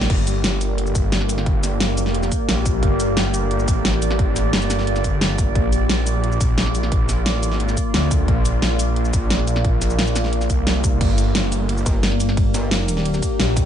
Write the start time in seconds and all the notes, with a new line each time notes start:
0.01 snare
0.10 G1 A#3 G4 D5, kick, closed hi-hat, crash
0.27 closed hi-hat, shaker
0.44 G1, snare, closed hi-hat
0.61 closed hi-hat, shaker
0.78 closed hi-hat
0.87 shaker
0.95 G1, kick, closed hi-hat, shaker
1.12 snare, closed hi-hat
1.21 snare
1.29 closed hi-hat, shaker
1.38 snare
1.46 kick, closed hi-hat
1.63 snare, closed hi-hat, shaker
1.80 snare, closed hi-hat
1.90 F#1
1.97 closed hi-hat, shaker
2.06 snare
2.14 F1, closed hi-hat
2.23 snare, shaker
2.32 kick, closed hi-hat, shaker
2.49 A#1, snare, closed hi-hat
2.66 kick, closed hi-hat, shaker
2.83 G1, kick, closed hi-hat
3.00 closed hi-hat, shaker
3.17 G1, snare, closed hi-hat
3.34 closed hi-hat, shaker
3.51 closed hi-hat
3.59 shaker
3.68 A1, kick, closed hi-hat, shaker
3.85 snare, closed hi-hat
3.93 snare
4.02 closed hi-hat, shaker
4.11 snare
4.19 kick, closed hi-hat
4.36 snare, closed hi-hat, shaker
4.53 G1, snare, closed hi-hat
4.62 shaker
4.70 snare, closed hi-hat, shaker
4.79 snare
4.87 G1, closed hi-hat
4.96 snare, shaker
5.04 kick, closed hi-hat, shaker
5.21 snare, closed hi-hat
5.38 kick, closed hi-hat, shaker
5.55 A#1 A#3 F4, kick, closed hi-hat
5.72 closed hi-hat, shaker
5.89 A#1, snare, closed hi-hat
6.07 closed hi-hat, shaker
6.24 closed hi-hat
6.32 shaker
6.41 A#1, kick, closed hi-hat, shaker
6.58 snare, closed hi-hat
6.66 snare
6.75 closed hi-hat, shaker
6.83 snare
6.92 kick, closed hi-hat
7.09 snare, closed hi-hat, shaker
7.26 snare, closed hi-hat
7.36 A1
7.43 closed hi-hat, shaker
7.51 snare
7.60 G#1, closed hi-hat
7.69 snare, shaker
7.77 kick, closed hi-hat, shaker
7.94 D2, snare, closed hi-hat
8.11 kick, closed hi-hat, shaker
8.28 A#1, kick, closed hi-hat
8.45 closed hi-hat, shaker
8.62 A#1, snare, closed hi-hat
8.79 closed hi-hat, shaker
8.96 closed hi-hat
9.05 shaker
9.13 A#1, kick, closed hi-hat, shaker
9.30 snare, closed hi-hat
9.39 snare
9.47 closed hi-hat, shaker
9.56 snare
9.65 kick, closed hi-hat
9.82 snare, closed hi-hat, shaker
9.90 shaker
9.99 snare, closed hi-hat
10.07 shaker
10.16 snare, closed hi-hat, shaker
10.24 snare
10.33 closed hi-hat
10.41 snare, shaker
10.50 C2, kick, closed hi-hat, shaker
10.67 snare, closed hi-hat
10.84 kick, closed hi-hat, shaker
11.01 G1 G4 D5, kick, closed hi-hat, ride, crash
11.18 closed hi-hat, ride, shaker
11.35 G1, snare, closed hi-hat, ride
11.52 closed hi-hat, ride, shaker
11.69 closed hi-hat, ride
11.78 shaker
11.86 G1, kick, closed hi-hat, ride, shaker
12.03 snare, closed hi-hat, ride
12.12 snare
12.20 closed hi-hat, ride, shaker
12.29 snare
12.37 kick, closed hi-hat, ride
12.54 snare, closed hi-hat, ride, shaker
12.71 snare, closed hi-hat, ride
12.88 closed hi-hat, ride, shaker
12.97 snare
13.05 D#1, closed hi-hat, ride
13.14 snare, shaker
13.22 kick, closed hi-hat, ride, shaker
13.40 A#1, snare, closed hi-hat, ride
13.57 kick, closed hi-hat, ride, shaker